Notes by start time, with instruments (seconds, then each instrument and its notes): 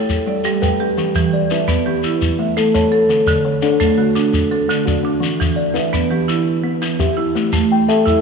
Already playing: marimba C#5 E5
0.09 shekere
0.26 kalimba G3, marimba D5
0.44 marimba G3, kalimba G4, shekere
0.62 kalimba B4, marimba G5, shekere
0.80 marimba G4, kalimba G4
0.98 kalimba E3, shekere
1.15 marimba E3, shekere
1.33 kalimba D5
1.50 kalimba E4 B4, marimba E5, shekere
1.68 marimba B3 B4, shekere
1.86 kalimba E3, marimba G4
2.03 marimba E4, shekere
2.22 shekere
2.39 kalimba A3, marimba E5
2.57 marimba A3, kalimba A4, shekere
2.74 kalimba C#5, marimba A5, shekere
2.92 kalimba A4, marimba A4
3.09 kalimba D3, shekere
3.27 marimba D3, shekere
3.45 kalimba C#5
3.62 kalimba D4 A4, marimba D5, shekere
3.80 marimba A3 A4, shekere
3.98 kalimba D3, marimba F#4
4.15 marimba D4, shekere
4.33 shekere
4.51 kalimba A3, marimba A4
4.68 marimba D3, kalimba D4, shekere
4.86 kalimba F#4, marimba D5, shekere
5.03 kalimba D4, marimba D4
5.20 kalimba E3, shekere
5.40 marimba E3, shekere
5.56 kalimba D5
5.74 kalimba E4 B4, marimba E5, shekere
5.93 marimba B3 B4, shekere
6.11 kalimba E3, marimba G4
6.28 marimba E4, shekere
6.63 kalimba B3, marimba B4
6.82 marimba E3, kalimba E4, shekere
6.99 kalimba G4, marimba E5, shekere
7.17 marimba E4, kalimba E4
7.35 kalimba A3, shekere
7.53 marimba A3, shekere
7.72 kalimba G5
7.88 kalimba A4 E5, marimba A5, shekere
8.05 marimba E4 E5, shekere